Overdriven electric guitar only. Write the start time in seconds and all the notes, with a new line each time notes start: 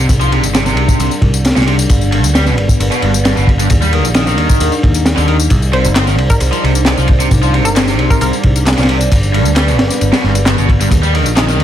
0.21 F3
0.32 C3
0.55 C3
0.66 C3
1.56 A#2
1.67 C3
2.12 G2
2.35 G3
2.46 B2
2.92 B2
3.03 G2
3.25 G2
3.37 B2
3.60 G2
3.82 G3
3.93 D#3
4.15 D#3
4.27 D#3
5.17 D3
5.28 D#3
5.73 C3
5.96 C4
6.07 D#3
6.52 F3
6.63 C3
6.86 C3
6.97 F3
7.20 C3
7.43 F3
7.54 C3
7.76 C3
7.88 C3
8.78 A#2
8.89 C3
9.34 G2
9.56 G3
9.68 B2
10.13 B2
10.24 G2
10.47 G2
10.58 B2
10.81 G2
11.03 G3
11.14 D#3
11.37 D#3
11.49 D#3